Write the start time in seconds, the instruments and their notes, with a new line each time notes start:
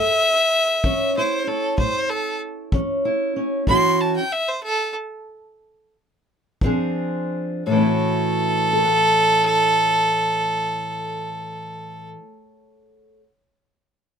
Already playing: steel-string acoustic guitar A2 A4, fiddle E5
0.84 steel-string acoustic guitar E3 C#4, kick
1.17 steel-string acoustic guitar E4, fiddle C5
1.47 steel-string acoustic guitar C#4, fiddle A4
1.78 steel-string acoustic guitar A2, fiddle C5, kick
2.10 fiddle A4
2.72 steel-string acoustic guitar E3 C#4, kick
3.05 steel-string acoustic guitar E4
3.36 steel-string acoustic guitar C#4
3.67 steel-string acoustic guitar A2 E3 C#4 E4 F#4, fiddle C6, kick
4.00 fiddle A5
4.16 fiddle G5
4.32 fiddle E5
4.48 fiddle C5
4.63 fiddle A4
6.61 steel-string acoustic guitar A#2 F3 C4 D4 G#4, kick
7.66 steel-string acoustic guitar A2, fiddle A4
7.72 steel-string acoustic guitar E3
7.76 steel-string acoustic guitar C#4
7.81 steel-string acoustic guitar E4
7.86 steel-string acoustic guitar F#4
8.73 steel-string acoustic guitar A4
8.79 steel-string acoustic guitar C#5
8.84 steel-string acoustic guitar F#5